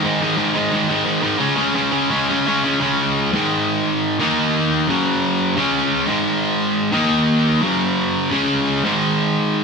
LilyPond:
\new Staff \with { instrumentName = "Distorted electric guitar" } { \clef bass \time 4/4 \key des \major \tempo 4 = 174 <aes, ees aes>8 <aes, ees aes>8 <aes, ees aes>8 <aes, ees aes>8 <aes, ees aes>8 <aes, ees aes>8 <aes, ees aes>8 <aes, ees aes>8 | <des aes des'>8 <des aes des'>8 <des aes des'>8 <des aes des'>8 <des aes des'>8 <des aes des'>8 <des aes des'>8 <des aes des'>8 | <des aes des'>4. <aes, ees aes>2~ <aes, ees aes>8 | <ees bes ees'>2 <ges, des ges>2 |
<des aes des'>4. <aes, ees aes>2~ <aes, ees aes>8 | <ees bes ees'>2 <ges, des ges>2 | <des aes des'>4. <aes, ees aes>2~ <aes, ees aes>8 | }